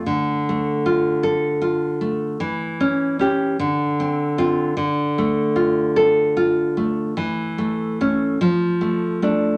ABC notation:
X:1
M:6/8
L:1/8
Q:3/8=50
K:Dm
V:1 name="Nylon-string guitar"
D, A, F A F A, | E, ^C [CG] D, =C [CF] | D, A, F A F A, | E, A, [A,^C] F, A, [A,D] |]